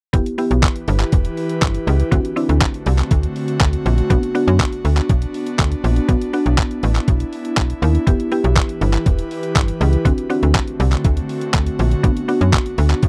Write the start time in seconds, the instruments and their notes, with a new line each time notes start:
0.13 fm bass E1, analog synth pad E3 E4 G4 B4, synth pluck B3 E4 G4, kick, closed hi-hat
0.26 closed hi-hat
0.38 synth pluck B3 E4 G4, open hi-hat
0.51 fm bass B1, closed hi-hat
0.63 kick, clap, closed hi-hat
0.76 closed hi-hat
0.88 fm bass G1, open hi-hat
1.00 clap, closed hi-hat
1.12 fm bass E1, kick, closed hi-hat
1.25 closed hi-hat
1.37 open hi-hat
1.49 closed hi-hat
1.62 fm bass G1, kick, clap, closed hi-hat
1.75 closed hi-hat
1.87 fm bass C#2, open hi-hat
2.00 closed hi-hat
2.11 fm bass D2, analog synth pad D3 A3 C4 F#4, synth pluck C4 D4 F#4, kick, closed hi-hat
2.25 closed hi-hat
2.36 synth pluck C4 D4 E4, open hi-hat
2.49 fm bass D2, closed hi-hat
2.61 kick, clap, closed hi-hat
2.74 closed hi-hat
2.86 fm bass C2, open hi-hat
2.98 clap, closed hi-hat
3.11 fm bass D2, kick, closed hi-hat
3.23 closed hi-hat
3.36 open hi-hat
3.48 closed hi-hat
3.61 fm bass D2, kick, clap, closed hi-hat
3.73 closed hi-hat
3.86 fm bass A#1, open hi-hat
3.98 closed hi-hat
4.10 fm bass B1, synth pluck B3 D4 F#4, analog synth pad B3 D4, kick, closed hi-hat
4.23 closed hi-hat
4.35 synth pluck B3 D4 F#4, open hi-hat
4.48 fm bass F#2, closed hi-hat
4.60 kick, clap, closed hi-hat
4.73 closed hi-hat
4.85 fm bass D2, open hi-hat
4.97 clap, closed hi-hat
5.09 fm bass B1, kick, closed hi-hat
5.22 closed hi-hat
5.34 open hi-hat
5.46 closed hi-hat
5.59 fm bass D2, kick, clap, closed hi-hat
5.72 closed hi-hat
5.84 fm bass A#1, open hi-hat
5.96 closed hi-hat
6.08 fm bass B1, synth pluck B3 D4 F#4, analog synth pad E4, kick, closed hi-hat
6.22 closed hi-hat
6.33 synth pluck B3 D4 F#4, open hi-hat
6.46 fm bass B1, closed hi-hat
6.58 kick, clap, closed hi-hat
6.71 closed hi-hat
6.83 fm bass A1, open hi-hat
6.95 clap, closed hi-hat
7.08 fm bass B1, kick, closed hi-hat
7.20 closed hi-hat
7.33 open hi-hat
7.45 closed hi-hat
7.57 fm bass B1, kick, clap, closed hi-hat
7.70 closed hi-hat
7.82 fm bass D#2, open hi-hat
7.95 closed hi-hat
8.07 fm bass E1, analog synth pad E3 G4 B4, synth pluck B3 E4 G4, kick, closed hi-hat
8.20 closed hi-hat
8.32 synth pluck B3 E4 G4, open hi-hat
8.44 fm bass B1, closed hi-hat
8.56 kick, clap, closed hi-hat
8.69 closed hi-hat
8.81 fm bass G1, open hi-hat
8.94 clap, closed hi-hat
9.06 fm bass E1, kick, closed hi-hat
9.19 closed hi-hat
9.31 open hi-hat
9.43 closed hi-hat
9.56 fm bass G1, kick, clap, closed hi-hat
9.68 closed hi-hat
9.81 fm bass C#2, open hi-hat
9.93 closed hi-hat
10.05 fm bass D2, analog synth pad D3 A3 C4 F#4, synth pluck C4 D4 F#4, kick, closed hi-hat
10.18 closed hi-hat
10.30 synth pluck C4 D4 F#4, open hi-hat
10.43 fm bass D2, closed hi-hat
10.55 kick, clap, closed hi-hat
10.68 closed hi-hat
10.80 fm bass C2, open hi-hat
10.92 clap, closed hi-hat
11.04 fm bass D2, kick, closed hi-hat
11.17 closed hi-hat
11.29 open hi-hat
11.41 closed hi-hat
11.54 fm bass D2, kick, clap, closed hi-hat
11.67 closed hi-hat
11.79 fm bass A#1, open hi-hat
11.91 closed hi-hat
12.03 fm bass B1, synth pluck B3 D4 F#4, analog synth pad B3 D4, kick, closed hi-hat
12.17 closed hi-hat
12.28 synth pluck B3 D4 F#4, open hi-hat
12.41 fm bass F#2, closed hi-hat
12.53 kick, clap, closed hi-hat
12.66 closed hi-hat
12.78 fm bass D2, open hi-hat
12.90 clap, closed hi-hat
13.03 fm bass B1, kick, closed hi-hat